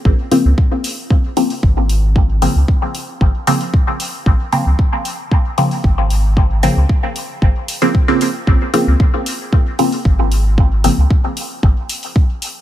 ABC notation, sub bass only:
X:1
M:4/4
L:1/16
Q:1/4=114
K:Bbm
V:1 name="Sub bass" clef=bass
B,,, z2 D,, z8 A,,,4- | A,,,2 z D,, z4 A,,, z6 z | B,,, z2 D,, z8 A,,,4- | A,,,2 z D,, z4 A,,, z6 z |
B,,, z2 D,, z8 A,,,4- | A,,,2 z D,, z4 A,,, z6 z |]